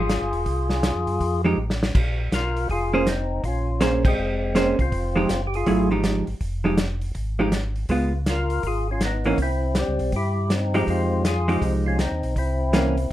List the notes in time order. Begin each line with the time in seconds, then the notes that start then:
Already playing: G#1 F4 G#4
0.09 snare, closed hi-hat
0.22 G1
0.33 E1, open hi-hat
0.46 C2, kick, open hi-hat
0.70 snare
0.83 snare, closed hi-hat
0.95 F2
1.07 F#2, open hi-hat
1.20 F2, kick, open hi-hat
1.44 F3 G#3 D#4 G4
1.57 A1
1.70 snare
1.83 snare
1.95 A#1, kick, crash
2.32 B1 F4 A#4, snare, closed hi-hat
2.57 open hi-hat
2.69 F1 F4 G#4, kick, open hi-hat
2.93 A#3 C#4 F4 G#4 C5
3.07 C4 D#4, snare, closed hi-hat
3.44 A#1 C#4 F4, kick, open hi-hat
3.81 A#3 C#4 G#4 C5, snare, closed hi-hat
4.05 G#3 C4, kick, crash
4.18 F1
4.55 A#3 C#4 G#4 C5, snare, closed hi-hat
4.79 C2 C4 F4, kick, open hi-hat
4.92 F1, kick, open hi-hat
5.16 F3 G#3 D#4 G4
5.29 F#1, snare, closed hi-hat
5.47 G4
5.54 F4 G#4, open hi-hat
5.66 G#1 F#3 A3 E4 G#4, kick, open hi-hat
5.91 F3 G#3 D#4 G4
6.04 snare, closed hi-hat
6.27 G#1, open hi-hat
6.41 F1, kick, open hi-hat
6.64 F3 G#3 D#4 G4
6.78 snare, closed hi-hat
7.01 open hi-hat
7.15 G#1, kick, open hi-hat
7.39 F3 G#3 D#4 G4
7.52 snare, closed hi-hat
7.76 open hi-hat
7.89 C#2 G#3 B3 F4, kick, open hi-hat
8.26 F4, snare, closed hi-hat
8.31 A#4
8.50 open hi-hat
8.63 G#1 F4, kick, open hi-hat
8.67 G#4
8.91 C#4 F4
9.01 snare, closed hi-hat
9.05 B3 D#4
9.24 E3 A#3 C#4, open hi-hat
9.38 C2, kick, open hi-hat
9.42 C4 E4
9.75 snare, closed hi-hat
9.79 G3 C4
9.88 C#2
9.99 B1, open hi-hat
10.12 G2 E4, kick, open hi-hat
10.16 G4
10.50 C4 D#4, snare, closed hi-hat
10.74 F3 G#3 D#4 G4, open hi-hat
10.87 F2 C4 F4, kick, open hi-hat
11.25 F4 G#4, snare, closed hi-hat
11.48 F3 G#3 D#4 G4, open hi-hat
11.62 C2 C4 D#4, kick, open hi-hat
11.86 C#4 F4
11.99 C4 D#4, snare, closed hi-hat
12.11 D#2
12.23 B1, open hi-hat
12.36 C2 C4 E4, kick, open hi-hat
12.73 E3 A#3 C#4, snare, closed hi-hat
12.97 open hi-hat